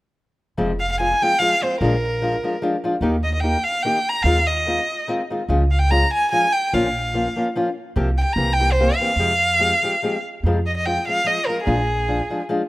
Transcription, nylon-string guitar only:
0.57 0.71 F2 medium
0.57 0.71 C3 medium
0.57 0.71 F3 medium
0.57 0.71 G#3 medium
0.57 0.72 C4 medium
0.57 0.71 F4 medium
0.99 1.12 F3 soft
0.99 1.12 G#3 soft
0.99 1.13 C4 soft
0.99 1.13 F4 medium
1.22 1.33 F3 soft
1.22 1.33 G#3 soft
1.22 1.33 C4 soft
1.22 1.33 F4 soft
1.40 1.53 F3 soft
1.40 1.54 G#3 medium
1.40 1.54 C4 medium
1.40 1.54 F4 medium
1.61 1.73 F3 soft
1.61 1.73 G#3 soft
1.61 1.74 C4 soft
1.61 1.74 F4 soft
1.80 1.94 A#2 medium
1.80 1.94 F3 medium
1.80 1.94 G#3 medium
1.80 1.94 D4 medium
1.80 1.94 F4 medium
2.22 2.35 F3 soft
2.22 2.35 G#3 soft
2.22 2.35 D4 soft
2.22 2.36 F4 medium
2.43 2.55 F3 medium
2.43 2.55 G#3 soft
2.43 2.55 D4 soft
2.43 2.55 F4 medium
2.62 2.75 F3 medium
2.62 2.75 G#3 medium
2.62 2.76 D4 medium
2.62 2.76 F4 medium
2.84 2.95 F3 medium
2.84 2.95 G#3 medium
2.84 2.96 D4 medium
2.84 2.96 F4 medium
3.02 3.15 D#3 medium
3.02 3.15 A#3 medium
3.02 3.15 D#4 medium
3.02 3.16 G4 medium
3.42 3.56 D#3 soft
3.42 3.56 A#3 soft
3.42 3.57 D#4 medium
3.42 3.57 G4 medium
3.85 3.97 D#3 medium
3.85 3.97 A#3 medium
3.85 3.98 D#4 medium
3.85 3.98 G4 medium
4.25 4.38 D#3 medium
4.25 4.38 G#3 medium
4.25 4.38 C4 medium
4.25 4.38 F4 medium
4.67 4.79 D#3 soft
4.67 4.79 G#3 medium
4.67 4.80 C4 soft
4.67 4.80 F4 medium
5.07 5.20 D#3 medium
5.07 5.21 G#3 medium
5.07 5.21 C4 medium
5.07 5.21 F4 medium
5.30 5.41 D#3 soft
5.30 5.41 G#3 soft
5.30 5.41 C4 soft
5.30 5.42 F4 medium
5.48 5.62 C#3 soft
5.48 5.62 F3 medium
5.48 5.62 G#3 medium
5.48 5.63 C#4 medium
5.48 5.62 F4 medium
5.90 6.04 F3 soft
5.90 6.04 G#3 soft
5.90 6.04 C#4 medium
5.90 6.04 F4 medium
6.32 6.45 F3 medium
6.32 6.45 G#3 medium
6.32 6.46 C#4 medium
6.32 6.46 F4 medium
6.73 6.86 A#2 medium
6.73 6.86 F3 medium
6.73 6.86 A#3 medium
6.73 6.86 C#4 medium
6.73 6.87 F4 medium
7.13 7.27 F3 soft
7.13 7.27 A#3 soft
7.13 7.27 C#4 medium
7.13 7.27 F4 medium
7.36 7.47 F3 medium
7.36 7.47 A#3 medium
7.36 7.47 C#4 medium
7.36 7.48 F4 soft
7.56 7.68 F3 medium
7.56 7.68 A#3 medium
7.56 7.68 C#4 medium
7.56 7.69 F4 medium
7.96 8.08 C3 medium
7.96 8.09 F3 medium
7.96 8.09 A#3 medium
7.96 8.09 C4 medium
7.96 8.09 G4 medium
8.37 8.49 E3 soft
8.37 8.50 A#3 soft
8.37 8.50 C4 medium
8.37 8.50 G4 medium
8.59 8.70 E3 soft
8.59 8.70 A#3 soft
8.59 8.70 C4 soft
8.59 8.71 G4 medium
8.80 8.91 E3 medium
8.80 8.91 A#3 medium
8.80 8.92 C4 medium
8.80 8.92 G4 medium
9.00 9.10 E3 soft
9.00 9.11 A#3 soft
9.00 9.11 C4 medium
9.00 9.12 G4 soft
9.19 9.32 F2 medium
9.19 9.31 C3 medium
9.19 9.32 F3 medium
9.19 9.32 G#3 medium
9.19 9.32 C4 medium
9.19 9.32 G4 medium
9.59 9.72 F3 medium
9.59 9.73 G#3 medium
9.59 9.73 C4 medium
9.59 9.73 G4 medium
9.82 9.94 F3 soft
9.82 9.94 G#3 medium
9.82 9.94 C4 soft
9.82 9.95 G4 medium
10.02 10.15 F3 medium
10.02 10.16 G#3 medium
10.02 10.16 C4 medium
10.02 10.16 G4 medium
10.45 10.57 F2 medium
10.45 10.58 C3 medium
10.45 10.58 F3 medium
10.45 10.58 G#3 medium
10.45 10.58 C4 medium
10.45 10.58 F4 medium
10.86 10.98 F3 soft
10.86 10.98 G#3 soft
10.86 10.98 C4 soft
10.86 10.99 F4 medium
11.07 11.18 F3 soft
11.07 11.18 G#3 soft
11.07 11.19 C4 soft
11.07 11.19 F4 soft
11.24 11.38 F3 medium
11.24 11.38 G#3 soft
11.24 11.39 C4 soft
11.24 11.39 F4 medium
11.47 11.58 F3 soft
11.47 11.59 G#3 soft
11.47 11.59 C4 soft
11.47 11.59 F4 soft
11.66 11.79 A#2 soft
11.66 11.79 F3 soft
11.66 11.79 G#3 medium
11.66 11.79 D4 medium
11.66 11.79 F4 medium
12.08 12.20 F3 soft
12.08 12.20 G#3 soft
12.08 12.21 D4 soft
12.08 12.21 F4 soft
12.30 12.40 F3 medium
12.30 12.41 G#3 medium
12.30 12.41 D4 medium
12.30 12.41 F4 soft
12.49 12.61 F3 medium
12.49 12.61 G#3 medium
12.49 12.62 D4 medium
12.49 12.62 F4 medium

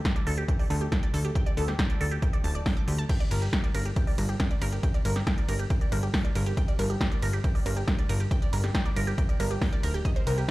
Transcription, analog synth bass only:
0.27 0.44 D2 medium
0.70 0.88 D2 loud
1.14 1.31 D2 loud
1.57 1.75 D2 loud
2.01 2.18 D2 medium
2.44 2.62 D1 medium
2.88 3.05 D2 medium
3.31 3.49 G1 medium
3.75 3.92 G1 medium
4.18 4.36 G1 loud
4.62 4.79 G1 loud
5.05 5.22 G1 loud
5.49 5.66 G1 medium
5.92 6.09 G1 loud
6.35 6.53 G1 loud
6.79 6.96 G1 loud
7.22 7.40 G1 medium
7.66 7.83 G1 loud
8.09 8.27 G1 loud
8.53 8.70 G1 medium
8.96 9.14 G1 medium
9.40 9.57 G1 loud
9.83 10.01 D1 loud
10.27 10.44 C2 loud

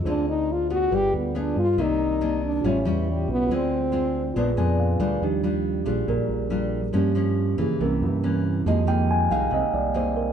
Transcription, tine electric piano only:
0.02 0.87 F4 soft
0.02 0.89 G#4 soft
0.02 0.90 C5 soft
0.08 0.91 D5 soft
0.88 1.74 F4 soft
0.88 1.75 G#4 soft
0.88 1.76 B4 soft
0.94 1.77 D5 medium
1.77 2.62 G4 soft
1.77 2.63 A#4 soft
1.82 2.64 D5 medium
2.61 3.45 F4 soft
2.61 3.48 G4 soft
2.65 3.49 C#5 soft
2.65 3.50 E5 medium
3.47 4.32 F4 soft
3.47 4.34 G#4 soft
3.51 4.34 C5 soft
3.51 4.36 D5 medium
4.34 5.19 F4 medium
4.34 5.20 G#4 medium
4.34 5.21 B4 medium
4.40 5.00 D5 medium
4.58 4.78 G#5 soft
4.80 4.99 F5 medium
5.01 5.21 D5 soft
5.22 6.90 F3 soft
5.22 6.90 G3 soft
5.22 6.91 D4 soft
5.22 5.84 G4 medium
5.87 6.08 G#4 medium
6.09 6.30 A#4 medium
6.94 7.23 F3 soft
6.94 7.23 A#3 soft
6.94 7.23 C#4 soft
6.94 7.56 G4 medium
7.60 7.80 G#4 medium
7.81 8.42 E3 soft
7.81 8.42 A#3 soft
7.81 8.42 C#4 soft
7.81 7.95 A#4 medium
8.66 9.27 D#3 soft
8.66 9.28 G#3 soft
8.66 9.28 A#3 soft
8.66 9.27 G4 soft
8.66 8.88 D#5 medium
8.88 9.09 G5 medium
9.11 9.31 G#5 medium
9.32 9.52 F5 medium
9.54 9.74 D#5 medium
9.74 9.95 D5 medium
9.96 10.17 C5 medium
10.17 10.33 A#4 medium

